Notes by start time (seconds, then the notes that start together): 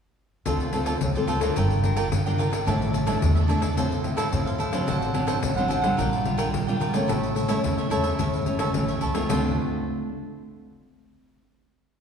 0.45 D2 D3 C4 F4 A4 C5 D5, pandeiro
0.60 pandeiro
0.73 C4 F4 A4 C5 D5, pandeiro
0.86 F4 A4 C5 D5, pandeiro
1.01 D2 A2, pandeiro
1.15 C4 F4 A4 C5 D5, pandeiro
1.27 F4 A4 C5 D5, pandeiro
1.41 D4 F4 A4 A#4 C5 D5, pandeiro
1.56 G1 G3 F4 A#4 D5 G5, pandeiro
1.70 pandeiro
1.83 D4 F4 A#4, pandeiro
1.96 F4 A#4 D5 G5, pandeiro
2.12 G1 D3, pandeiro
2.26 D4 F4 A#4 D5 G5, pandeiro
2.38 F4 A#4 D5 G5, pandeiro
2.52 A#4 D5 G5, pandeiro
2.66 A1 A2 A3 D4 E4 A4 D5 E5, pandeiro
2.82 pandeiro
2.93 D4 A4 D5 E5, pandeiro
3.06 A3 D4 E4 A4 D5 E5, pandeiro
3.22 E2 E3, pandeiro
3.35 A4 D5 E5, pandeiro
3.48 A3 D4 E4 A4 D5 E5, pandeiro
3.61 A4 D5 E5, pandeiro
3.77 A1 A2 F3 C4 E4 A4 C5 F5, pandeiro
3.92 pandeiro
4.04 F3 C4 E4, pandeiro
4.17 E4 A4 C5 F5, pandeiro
4.33 A2 F3 C4 E4, pandeiro
4.46 A4 C5 F5, pandeiro
4.58 E4 A4 C5 F5, pandeiro
4.72 F#3 C4 D4 A4 C5 F5, pandeiro
4.87 A1 A2 D4 A4 C5 F#5, pandeiro
5.02 pandeiro
5.14 F#3 C4 D4 A4 C5 F#5, pandeiro
5.27 D4 A4 C5 F#5, pandeiro
5.43 A1 A2, pandeiro
5.56 F#3 C4 D4 A4 C5 F#5, pandeiro
5.68 D4 A4 C5 F#5, pandeiro
5.81 G3 D4 F4 A4 C5 F#5, pandeiro
5.97 A#1 A#2 F4 A#4 D5 G5, pandeiro
6.13 pandeiro
6.25 G3 D4 F4, pandeiro
6.37 F4 A#4 D5 G5, pandeiro
6.54 A#1 A#2, pandeiro
6.67 G3 D4 F4 A#4 D5 G5, pandeiro
6.80 F4 A#4 D5 G5, pandeiro
6.93 A3 C#4 E4 A#4 D5 G5, pandeiro
7.08 A1 A2 E4 A4 C#5 E5, pandeiro
7.23 pandeiro
7.35 E4 A4 C#5 E5, pandeiro
7.48 A3 C#4 E4 A4 C#5 E5, pandeiro
7.64 E2 E3, pandeiro
7.77 A4 C#5 E5, pandeiro
7.90 A3 C#4 E4 A4 C#5 E5, pandeiro
8.04 A4 C#5 E5, pandeiro
8.18 E2 A2 E4 A4 C#5 E5, pandeiro
8.33 pandeiro
8.46 G1 A3 C#4 E4, pandeiro
8.59 E4 A4 C#5 E5, pandeiro
8.74 A1 E3 A3 C#4 E4, pandeiro
8.88 A4 C#5 E5, pandeiro
9.01 C#2 E4 A4 C#5 E5, pandeiro
9.14 A3 C4 F4 A4 C#5 E5, pandeiro
9.29 D2 D3 A3 C4 F4 A4 C5 D5, pandeiro